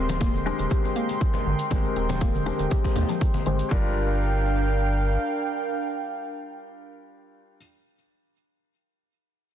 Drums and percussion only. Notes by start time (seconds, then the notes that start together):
0.09 closed hi-hat, high conga, shaker
0.21 kick, closed hi-hat, muted conga, shaker
0.35 shaker
0.47 muted conga, high conga
0.59 closed hi-hat, shaker
0.70 kick, closed hi-hat, high conga, shaker
0.85 muted conga, shaker
0.96 closed hi-hat
1.09 closed hi-hat, muted conga, shaker
1.21 kick, closed hi-hat, shaker
1.34 muted conga, high conga, shaker
1.59 closed hi-hat, shaker
1.71 kick, closed hi-hat, muted conga, high conga, shaker
1.84 shaker
1.96 closed hi-hat, muted conga
2.09 closed hi-hat, high conga, low conga, shaker
2.20 kick, closed hi-hat, muted conga, shaker
2.35 shaker
2.46 closed hi-hat, muted conga, high conga
2.59 closed hi-hat, shaker
2.71 kick, closed hi-hat, high conga, shaker
2.84 kick, muted conga, shaker
2.96 closed hi-hat, high conga, low conga
3.09 closed hi-hat, muted conga, shaker
3.21 kick, closed hi-hat, shaker
3.34 muted conga, high conga, shaker
3.46 closed hi-hat
3.59 closed hi-hat, shaker
3.71 kick